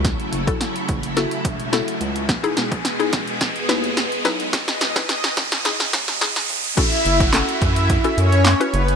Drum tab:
CC |----------------|----------------|----------------|x---------------|
HH |xxxxxxxxxxxxxxxx|xxxxxxxxxxxxxxxx|xxxxxxxxxxxxxxox|xxxxxxxxxxxxxxxx|
CP |----------------|----------------|----------------|----x-------x---|
SD |o---o---o---o---|o-o-o-o-o-o-o-o-|oooooooooooooo--|----o-------o---|
BD |o--o--o---o-----|o--o--o-o-------|o--o--o---o-----|o--o--o-o-------|